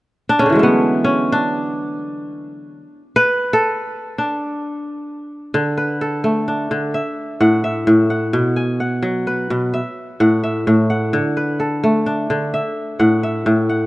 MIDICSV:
0, 0, Header, 1, 2, 480
1, 0, Start_track
1, 0, Tempo, 466563
1, 2821, Time_signature, 12, 3, 24, 8
1, 14265, End_track
2, 0, Start_track
2, 0, Title_t, "Kora"
2, 0, Program_c, 0, 46
2, 302, Note_on_c, 0, 62, 82
2, 404, Note_on_c, 0, 61, 79
2, 430, Note_on_c, 0, 49, 32
2, 466, Note_off_c, 0, 62, 0
2, 473, Note_on_c, 0, 50, 35
2, 511, Note_on_c, 0, 52, 43
2, 540, Note_on_c, 0, 54, 46
2, 569, Note_on_c, 0, 56, 49
2, 585, Note_off_c, 0, 49, 0
2, 609, Note_on_c, 0, 57, 52
2, 649, Note_on_c, 0, 59, 74
2, 1071, Note_off_c, 0, 61, 0
2, 1075, Note_on_c, 0, 61, 75
2, 1362, Note_on_c, 0, 62, 72
2, 1424, Note_off_c, 0, 61, 0
2, 2566, Note_off_c, 0, 59, 0
2, 2663, Note_off_c, 0, 57, 0
2, 2880, Note_off_c, 0, 50, 0
2, 2918, Note_off_c, 0, 52, 0
2, 2947, Note_off_c, 0, 54, 0
2, 2977, Note_off_c, 0, 56, 0
2, 3090, Note_off_c, 0, 62, 0
2, 3251, Note_on_c, 0, 71, 91
2, 3634, Note_on_c, 0, 69, 82
2, 4304, Note_on_c, 0, 62, 58
2, 4516, Note_off_c, 0, 71, 0
2, 4990, Note_off_c, 0, 69, 0
2, 5701, Note_on_c, 0, 50, 72
2, 5941, Note_on_c, 0, 71, 56
2, 6032, Note_off_c, 0, 62, 0
2, 6185, Note_on_c, 0, 69, 56
2, 6418, Note_on_c, 0, 57, 68
2, 6665, Note_on_c, 0, 62, 57
2, 6890, Note_off_c, 0, 50, 0
2, 6902, Note_on_c, 0, 50, 66
2, 7142, Note_on_c, 0, 76, 57
2, 7188, Note_off_c, 0, 50, 0
2, 7206, Note_off_c, 0, 71, 0
2, 7541, Note_off_c, 0, 69, 0
2, 7618, Note_on_c, 0, 45, 74
2, 7620, Note_on_c, 0, 78, 57
2, 7855, Note_off_c, 0, 76, 0
2, 7860, Note_on_c, 0, 76, 54
2, 8084, Note_off_c, 0, 45, 0
2, 8097, Note_on_c, 0, 45, 72
2, 8330, Note_off_c, 0, 78, 0
2, 8334, Note_on_c, 0, 78, 53
2, 8393, Note_off_c, 0, 62, 0
2, 8473, Note_off_c, 0, 57, 0
2, 8573, Note_on_c, 0, 47, 76
2, 8626, Note_off_c, 0, 45, 0
2, 8810, Note_on_c, 0, 80, 53
2, 8923, Note_off_c, 0, 76, 0
2, 9051, Note_off_c, 0, 78, 0
2, 9055, Note_on_c, 0, 78, 57
2, 9285, Note_on_c, 0, 54, 68
2, 9537, Note_on_c, 0, 71, 61
2, 9736, Note_off_c, 0, 80, 0
2, 9765, Note_off_c, 0, 47, 0
2, 9777, Note_on_c, 0, 47, 67
2, 10017, Note_on_c, 0, 76, 59
2, 10047, Note_off_c, 0, 78, 0
2, 10065, Note_off_c, 0, 47, 0
2, 10065, Note_off_c, 0, 54, 0
2, 10495, Note_on_c, 0, 45, 71
2, 10497, Note_on_c, 0, 78, 61
2, 10732, Note_off_c, 0, 76, 0
2, 10736, Note_on_c, 0, 76, 54
2, 10801, Note_off_c, 0, 71, 0
2, 10965, Note_off_c, 0, 45, 0
2, 10978, Note_on_c, 0, 45, 71
2, 11209, Note_off_c, 0, 78, 0
2, 11213, Note_on_c, 0, 78, 54
2, 11452, Note_on_c, 0, 50, 73
2, 11504, Note_off_c, 0, 45, 0
2, 11695, Note_on_c, 0, 71, 53
2, 11800, Note_off_c, 0, 76, 0
2, 11930, Note_on_c, 0, 69, 55
2, 12176, Note_on_c, 0, 57, 72
2, 12205, Note_off_c, 0, 78, 0
2, 12410, Note_on_c, 0, 62, 59
2, 12642, Note_off_c, 0, 50, 0
2, 12654, Note_on_c, 0, 50, 70
2, 12899, Note_on_c, 0, 76, 59
2, 12945, Note_off_c, 0, 50, 0
2, 12960, Note_off_c, 0, 71, 0
2, 13286, Note_off_c, 0, 69, 0
2, 13369, Note_on_c, 0, 78, 61
2, 13371, Note_on_c, 0, 45, 72
2, 13610, Note_off_c, 0, 76, 0
2, 13614, Note_on_c, 0, 76, 57
2, 13835, Note_off_c, 0, 45, 0
2, 13848, Note_on_c, 0, 45, 72
2, 14085, Note_off_c, 0, 78, 0
2, 14089, Note_on_c, 0, 78, 54
2, 14138, Note_off_c, 0, 62, 0
2, 14231, Note_off_c, 0, 57, 0
2, 14265, Note_off_c, 0, 45, 0
2, 14265, Note_off_c, 0, 76, 0
2, 14265, Note_off_c, 0, 78, 0
2, 14265, End_track
0, 0, End_of_file